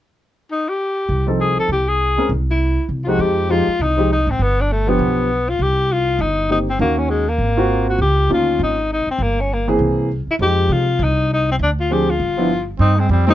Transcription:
0.51 D#4
0.69 G4
1.09 C2
1.27 F3 C4 D#4 A4
1.41 G#4
1.59 A4
1.69 C2 G4
1.88 G#4
2.17 G#3 C4 C#4 A#4
2.29 C2
2.50 E4
2.89 C2
3.04 F3 G#3 D#4 F4
3.08 F#4 G4
3.19 F2 G4
3.49 F3 G#3 D#4 F4 G4
3.68 muted upright bass stroke
3.79 C2 D#4
3.97 F3 G#3 D#4 G4
4.12 D#4
4.27 G#1 C4
4.39 G1 B3
4.61 D4
4.72 A3
4.87 F3 B3 D4 G4
4.99 B1
5.50 F4
5.59 C2 G4
5.92 F4
6.19 G1 D#4
6.49 D#3 A#3 C4 D#4 G4
6.69 C4
6.79 D#2 D#3 A#3 C#4 F#4
6.98 C#4
7.10 G#3
7.29 A#3
7.38 G#1
7.57 A#3 C4 F4 F#4
7.89 F#4
7.99 C#2 G4
8.29 D2 D#3 A#3 C#4 F4
8.33 F4
8.59 G#1 D#4
8.93 D#4
9.07 muted upright bass stroke
9.11 C4
9.19 G1
9.23 A#3
9.41 C#4
9.53 A#3
9.68 E3 A#3 C4 G#4
9.79 C2
10.27 E4, muted upright bass stroke
10.39 F2 F3 G#3 D#4 G4
10.69 C3 F4
10.99 C2
11.03 D#4
11.33 D#4
11.52 C4
11.59 D2 D4
11.80 F4
11.90 F3 C4 D4 G4 G#4
12.10 F4
12.20 G1
12.37 F3 B3 D4 E4
12.79 G2 C4 D#4
12.97 G#3 C4
13.09 F2 G3 C4
13.27 D#3 G3 A#3 C4 D#4 G4

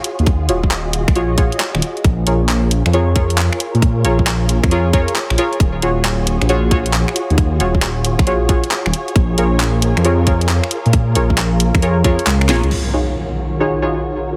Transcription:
Already playing: F4 F#4 G#4 C#5
0.04 open hi-hat
0.19 D#2, closed hi-hat
0.26 D#5, kick, closed hi-hat
0.49 D#1 F4 F#4 G#4 C#5, open hi-hat
0.64 kick
0.71 clap, closed hi-hat
0.93 open hi-hat
1.08 A#1, finger snap, kick, closed hi-hat
1.15 F4 F#4 G#4 C#5, closed hi-hat
1.38 A#1 F4 F#4 G#4 C#5, kick, open hi-hat
1.52 closed hi-hat
1.60 clap, closed hi-hat
1.75 D#1, finger snap
1.82 open hi-hat
1.97 closed hi-hat
2.04 A#1 F4 G#4 A#4 C#5, kick, closed hi-hat
2.27 A#1 F4 G#4 A#4 C#5, open hi-hat
2.49 clap, closed hi-hat
2.71 open hi-hat
2.86 F2, finger snap, closed hi-hat
2.93 F4 G#4 A#4 C#5, closed hi-hat
3.16 F4 G#4 A#4 C#5, kick, open hi-hat
3.30 closed hi-hat
3.38 clap, closed hi-hat
3.53 finger snap
3.60 open hi-hat
3.74 A#2, closed hi-hat
3.82 kick, closed hi-hat
4.04 A#1 F4 G#4 A#4 C#5, open hi-hat
4.19 kick
4.27 clap, closed hi-hat
4.49 open hi-hat
4.63 F2, finger snap, kick, closed hi-hat
4.71 F4 G#4 A#4 C#5, closed hi-hat
4.93 F2 F4 G#4 A#4 C#5, kick, open hi-hat
5.08 closed hi-hat
5.16 clap, closed hi-hat
5.30 A#1, finger snap
5.38 F4 G#4 A#4 C#5, open hi-hat
5.53 closed hi-hat
5.60 D#1 F4 F#4, kick, closed hi-hat
5.82 D#1 F4 F#4 G#4 C#5, open hi-hat
6.05 clap, closed hi-hat
6.27 open hi-hat
6.41 A#1, finger snap, closed hi-hat
6.49 F4 F#4 G#4 C#5, closed hi-hat
6.71 F4 F#4 G#4 C#5, kick, open hi-hat
6.86 closed hi-hat
6.93 clap, closed hi-hat
7.08 finger snap
7.16 open hi-hat
7.30 D#2, closed hi-hat
7.38 kick, closed hi-hat
7.60 D#1 F4 F#4 G#4 C#5, open hi-hat
7.75 kick
7.82 clap, closed hi-hat
8.05 open hi-hat
8.19 A#1, finger snap, kick, closed hi-hat
8.27 F4 F#4 G#4 C#5, closed hi-hat
8.49 A#1 F4 F#4 G#4 C#5, kick, open hi-hat
8.64 closed hi-hat
8.71 clap, closed hi-hat
8.86 D#1, finger snap
8.94 open hi-hat
9.08 closed hi-hat
9.16 A#1 F4 A#4, kick, closed hi-hat
9.38 A#1 F4 G#4 A#4 C#5, open hi-hat
9.60 clap, closed hi-hat
9.82 open hi-hat
9.97 F2, finger snap, closed hi-hat
10.05 F4 G#4 A#4 C#5, closed hi-hat
10.27 F4 G#4 A#4 C#5, kick, open hi-hat
10.41 closed hi-hat
10.49 clap, closed hi-hat
10.64 finger snap
10.71 open hi-hat
10.86 A#2, closed hi-hat
10.93 kick, closed hi-hat
11.15 A#1 F4 G#4 A#4 C#5, open hi-hat
11.30 kick
11.38 clap, closed hi-hat
11.60 open hi-hat
11.74 F2, finger snap, kick, closed hi-hat
11.82 F4 G#4 A#4 C#5, closed hi-hat
12.04 F2 F4 G#4 A#4 C#5, kick, open hi-hat
12.19 closed hi-hat
12.26 C#2, clap, closed hi-hat
12.41 finger snap
12.49 A#1 F4 G#4 A#4 C#5, snare, open hi-hat
12.63 C#2, closed hi-hat
12.71 D#3 F4 F#4 G#4 A#4 C#5, crash, impact
12.93 D#4 F4 F#4 G#4 C#5
13.60 D#4 F4 F#4 G#4 C#5
13.82 D#4 F4 F#4 G#4 C#5

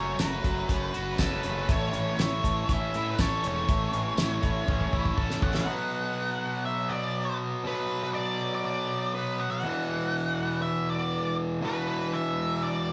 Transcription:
Already playing: F#1 F#3 A3 C#4 A4 C#5
0.19 F#1 A3 F#4 B4, snare, closed hi-hat, tambourine
0.44 F#1 F#3, kick, closed hi-hat
0.69 F#1 C#4, kick, closed hi-hat
0.93 F#1 F#4, closed hi-hat
1.18 F#1 C#4 A4 B4, kick, snare, closed hi-hat, tambourine
1.43 F#1 A3 C#4, closed hi-hat
1.58 B4
1.69 A1 A2 A3 C#5, kick, closed hi-hat
1.93 A1 E3 C#4, closed hi-hat
2.18 A1 A3 E4 C#5, snare, closed hi-hat, tambourine
2.44 A1 E3 A3, kick, closed hi-hat
2.69 A1 C#4 E5, kick, closed hi-hat
2.94 A2 E4, closed hi-hat
3.10 B4
3.18 A1 C#4 A4 C#5, kick, snare, closed hi-hat, tambourine
3.44 E1 A3 C#4, closed hi-hat
3.48 C#5
3.68 A1 A2 A3, kick, closed hi-hat
3.93 A1 E3 C#4, closed hi-hat
4.17 A1 A3 E4, snare, closed hi-hat, tambourine
4.42 A1 E3 A3, kick, closed hi-hat
4.68 A1 C#4, kick
4.81 kick
4.93 A1 E4, kick
5.05 kick
5.17 A1 C#4 A4, kick
5.30 snare
5.42 A1 A3 C#4 F#5, kick
5.55 F#5, snare
5.65 B2 F#3 B3
6.65 E5
6.89 D5
7.64 B2 F#3 B3 B4
8.04 B4
8.14 D5
8.55 D5
8.65 D5
9.14 B4
9.40 F#5
9.51 F#5
9.63 E2 B2 E3
10.62 E5
10.90 D5
11.61 E2 B2 E3 B4
12.13 E5
12.63 D5

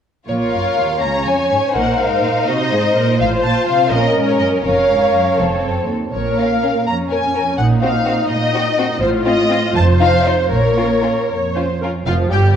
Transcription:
0.28 A#1 A#2 F4 A#4 C#5
0.52 F#2 F5
0.78 D#2
1.01 C#2 C#4 C#5 A#5
1.26 F2 G#5
1.51 G#2
1.74 A#1 A#2 D#4 A#4 C5 F#5
1.99 G#2 F5
2.23 A#2
2.47 C3 F#4 D#5
2.71 G#2 G#4
2.95 A#2 A#4
3.18 A1 A2 F4 C5 F5
3.43 A#2 A5
3.67 C3 F5
3.91 A#1 A#2 C#4 A#4 D#5
4.15 G#2
4.28 C#5
4.39 F#2 D#5
4.63 F1 F2 C#4 A#4 C#5 F5
4.89 G#2
5.13 F#2
5.38 F1 F2 C4 A4
5.62 F#2
5.88 D#2
6.13 A#1 A#2 A#4 C#5
6.38 C#4 A#4 F5
6.63 C#4 A#4
6.87 F2 C#4 A#5
7.10 C#4 A#4 G#5
7.34 C#4 A#4
7.58 A#1 A#2 D#4 F#5
7.82 C4 F#4 F5
8.06 C4 F#4
8.30 A#2 D#5
8.54 C4 F#4
8.78 C4 F#4
9.01 A1 A2 F4 C5
9.26 C4 F4 D#5
9.50 C4 F4
9.75 F1 F2 C5 A5
10.00 D#4 F4 F5
10.26 D#4 F4 C5
10.51 A#1 A#2 A#4 C#5
10.77 C#4 F4
11.03 C#4 F4
11.29 F2 C#5
11.55 C#4 F4 C5
11.82 C#4 F4 A#4
12.06 F1 F2 F3 F4 F5
12.31 G1 G2 G3 G4 G5

